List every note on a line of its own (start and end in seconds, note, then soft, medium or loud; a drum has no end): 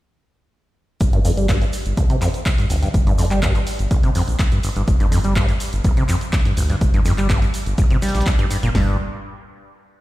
1.01 1.55 G1 loud
1.01 kick loud
1.01 closed hi-hat medium
1.01 shaker medium
1.13 1.20 G2 loud
1.13 closed hi-hat soft
1.13 shaker soft
1.25 1.32 F2 loud
1.25 open hi-hat medium
1.25 shaker medium
1.37 1.47 G3 medium
1.37 closed hi-hat soft
1.37 shaker soft
1.49 1.59 G2 medium
1.49 kick medium
1.49 snare loud
1.49 clap loud
1.49 closed hi-hat medium
1.49 shaker medium
1.61 1.65 G2 medium
1.61 closed hi-hat soft
1.61 shaker soft
1.73 open hi-hat medium
1.73 shaker medium
1.85 1.93 G1 medium
1.85 closed hi-hat soft
1.85 shaker soft
1.97 2.04 G1 loud
1.97 kick loud
1.97 closed hi-hat medium
1.97 shaker soft
1.97 shaker medium
2.10 2.16 C3 loud
2.10 closed hi-hat soft
2.10 shaker soft
2.21 2.28 F2 loud
2.21 clap soft
2.21 open hi-hat medium
2.21 shaker medium
2.34 closed hi-hat soft
2.34 shaker soft
2.46 kick loud
2.46 snare loud
2.46 clap loud
2.46 closed hi-hat medium
2.46 shaker medium
2.46 shaker soft
2.58 2.66 G2 medium
2.58 snare soft
2.58 closed hi-hat soft
2.58 shaker soft
2.70 2.77 G1 medium
2.70 2.86 D2 medium
2.70 open hi-hat loud
2.70 shaker medium
2.82 2.89 G2 medium
2.82 snare soft
2.82 closed hi-hat soft
2.82 shaker soft
2.94 3.48 G1 loud
2.94 kick loud
2.94 closed hi-hat medium
2.94 shaker medium
3.07 3.13 G2 loud
3.07 closed hi-hat soft
3.07 shaker soft
3.18 3.25 F2 medium
3.18 open hi-hat loud
3.18 shaker medium
3.31 3.40 G3 medium
3.31 clap soft
3.31 closed hi-hat soft
3.31 shaker soft
3.42 3.53 G2 medium
3.42 kick loud
3.42 snare loud
3.42 clap loud
3.42 closed hi-hat medium
3.42 shaker medium
3.55 3.59 G2 medium
3.55 closed hi-hat soft
3.55 shaker soft
3.67 open hi-hat medium
3.67 shaker medium
3.79 3.87 G1 medium
3.79 closed hi-hat soft
3.79 shaker soft
3.91 3.98 G1 medium
3.91 kick loud
3.91 closed hi-hat medium
3.91 shaker medium
4.03 4.11 G1 loud
4.03 4.10 C3 loud
4.03 closed hi-hat soft
4.03 shaker soft
4.15 4.22 F2 loud
4.15 open hi-hat loud
4.15 shaker medium
4.28 4.35 A#1 medium
4.28 closed hi-hat soft
4.28 shaker soft
4.39 kick loud
4.39 snare loud
4.39 clap loud
4.39 closed hi-hat medium
4.39 shaker medium
4.39 shaker soft
4.52 4.59 G2 medium
4.52 closed hi-hat soft
4.52 shaker soft
4.63 4.70 G1 medium
4.63 open hi-hat loud
4.63 shaker medium
4.76 4.84 G1 loud
4.76 4.83 G2 medium
4.76 closed hi-hat soft
4.76 shaker soft
4.88 5.42 G1 loud
4.88 kick loud
4.88 closed hi-hat medium
4.88 shaker soft
4.88 shaker medium
5.00 5.07 G2 loud
5.00 closed hi-hat soft
5.00 shaker soft
5.12 5.19 F2 loud
5.12 open hi-hat loud
5.12 shaker medium
5.24 5.34 G3 medium
5.24 closed hi-hat soft
5.24 shaker soft
5.36 5.46 G2 loud
5.36 kick loud
5.36 snare loud
5.36 clap loud
5.36 closed hi-hat medium
5.36 shaker medium
5.48 5.53 G2 medium
5.48 closed hi-hat soft
5.48 shaker soft
5.60 open hi-hat loud
5.60 shaker medium
5.60 shaker loud
5.72 5.80 G1 medium
5.72 closed hi-hat soft
5.72 shaker soft
5.84 5.91 G1 loud
5.84 kick loud
5.84 closed hi-hat medium
5.84 shaker medium
5.97 6.04 C3 loud
5.97 closed hi-hat soft
5.97 shaker soft
6.09 6.16 F2 loud
6.09 clap soft
6.09 open hi-hat loud
6.09 shaker medium
6.09 shaker loud
6.21 closed hi-hat soft
6.21 shaker soft
6.32 kick loud
6.32 snare loud
6.32 clap loud
6.32 closed hi-hat medium
6.32 shaker medium
6.45 6.53 G2 medium
6.45 snare soft
6.45 closed hi-hat soft
6.45 shaker soft
6.57 6.64 G1 medium
6.57 6.73 D2 loud
6.57 open hi-hat loud
6.57 shaker medium
6.57 shaker loud
6.70 6.76 G2 medium
6.70 snare soft
6.70 closed hi-hat soft
6.70 shaker soft
6.81 7.35 G1 loud
6.81 kick loud
6.81 closed hi-hat medium
6.81 shaker medium
6.94 7.00 G2 loud
6.94 closed hi-hat soft
6.94 shaker soft
7.05 7.12 F2 loud
7.05 open hi-hat loud
7.05 shaker medium
7.18 7.28 G3 medium
7.18 clap soft
7.18 closed hi-hat soft
7.18 shaker soft
7.30 7.40 G2 loud
7.30 kick loud
7.30 snare loud
7.30 clap loud
7.30 closed hi-hat medium
7.30 shaker medium
7.42 7.46 G2 medium
7.42 closed hi-hat soft
7.42 shaker soft
7.54 open hi-hat loud
7.54 shaker medium
7.66 7.74 G1 medium
7.66 closed hi-hat soft
7.66 shaker soft
7.78 7.85 G1 loud
7.78 kick loud
7.78 closed hi-hat medium
7.78 shaker medium
7.90 7.98 G1 loud
7.90 7.97 C3 loud
7.90 closed hi-hat soft
7.90 shaker soft
8.02 8.28 G3 medium
8.02 snare medium
8.02 open hi-hat loud
8.02 shaker medium
8.02 shaker loud
8.08 snare medium
8.08 shaker medium
8.15 8.22 A#1 medium
8.15 snare medium
8.15 closed hi-hat soft
8.15 shaker medium
8.15 shaker soft
8.21 snare medium
8.21 shaker medium
8.26 8.31 F2 medium
8.26 kick loud
8.26 snare loud
8.26 clap loud
8.26 closed hi-hat medium
8.26 shaker medium
8.39 8.46 G2 loud
8.39 8.45 G2 loud
8.39 closed hi-hat soft
8.39 shaker soft
8.51 8.58 G2 medium
8.51 open hi-hat loud
8.51 shaker medium
8.63 8.71 G1 loud
8.63 8.70 A#2 loud
8.63 closed hi-hat soft
8.63 shaker soft
8.75 8.97 G1 medium
8.75 8.97 G2 medium
8.75 snare loud
8.75 floor tom loud
8.75 open hi-hat medium